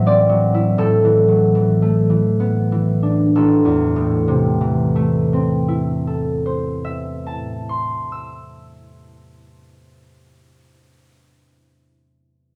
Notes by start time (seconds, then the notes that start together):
Already playing: A2 E3 F#3 E4 A4 C5 E5
0.06 C4 D5
0.29 F#3
0.54 E4
0.78 A2 A4
1.04 E3
1.28 F#3
1.55 E3
1.82 A3
2.10 E3
2.40 B3
2.72 E3
3.03 D4
3.35 A1 A4
3.65 E2
3.96 A2
4.28 C3
4.61 E3
4.96 A3
5.33 C4
5.68 E4
6.07 A4
6.46 C5
6.85 E5
7.26 A5
7.69 C6
8.12 E6